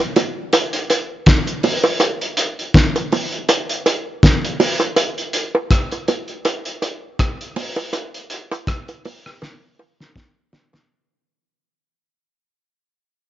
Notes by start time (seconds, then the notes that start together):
0.00 closed hi-hat, high bongo
0.16 closed hi-hat, high bongo, low bongo
0.53 closed hi-hat, high bongo
0.73 closed hi-hat
0.90 closed hi-hat, high bongo
1.26 kick, snare, closed hi-hat
1.47 closed hi-hat
1.63 open hi-hat, low bongo
1.84 high bongo
2.00 closed hi-hat, high bongo
2.21 closed hi-hat
2.37 closed hi-hat
2.59 closed hi-hat
2.74 kick, snare, closed hi-hat
2.96 closed hi-hat, high bongo
3.12 open hi-hat, high bongo, low bongo
3.32 closed hi-hat
3.49 closed hi-hat, high bongo
3.69 closed hi-hat
3.86 closed hi-hat, high bongo
4.23 kick, snare, closed hi-hat
4.45 closed hi-hat
4.60 open hi-hat, low bongo
4.80 closed hi-hat, high bongo
4.96 closed hi-hat, high bongo
5.18 closed hi-hat
5.33 closed hi-hat
5.55 high bongo
5.71 kick, cross-stick, closed hi-hat
5.91 closed hi-hat, high bongo
6.08 closed hi-hat, high bongo, low bongo
6.28 closed hi-hat
6.45 closed hi-hat, high bongo
6.65 closed hi-hat
6.82 closed hi-hat, high bongo
7.19 kick, cross-stick, closed hi-hat
7.41 closed hi-hat
7.56 open hi-hat, low bongo
7.76 high bongo
7.93 closed hi-hat, high bongo
8.14 closed hi-hat
8.30 closed hi-hat
8.51 closed hi-hat, high bongo
8.67 kick, cross-stick, closed hi-hat
8.88 closed hi-hat, high bongo
9.05 open hi-hat, high bongo, low bongo
9.26 cross-stick
9.42 snare, high bongo
9.79 high bongo
10.00 snare
10.16 kick, snare
10.53 snare, low bongo
10.73 snare, high bongo